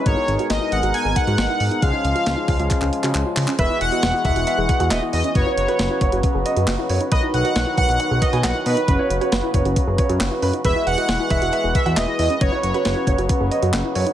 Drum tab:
HH |x-xxx-xxx-xxx-ox|x-xxx-oxx-xxx-ox|x-xxx-xxx-xxx-ox|x-xxx-xxx-xxx-ox|
CP |----------------|--------xx-xx-xx|------------x---|------------x---|
SD |----o-------o---|----o-----------|----o-------o---|----o-------o---|
BD |o---------o-----|o-----o-o-------|o-----o---o-----|o-----o-o-------|

HH |x-xxx-xxx-xxx-ox|x-xxx-xxx-xxx-ox|x-xxx-xxx-xxx-ox|x-xxx-xxx-xxx-ox|
CP |------------x---|------------x---|------------x---|------------x---|
SD |----o-------o---|----o-------o---|----o-------o---|----o-------o---|
BD |o-----o---o-----|o-----o-o-o-----|o-----o---o-----|o-----o-o-------|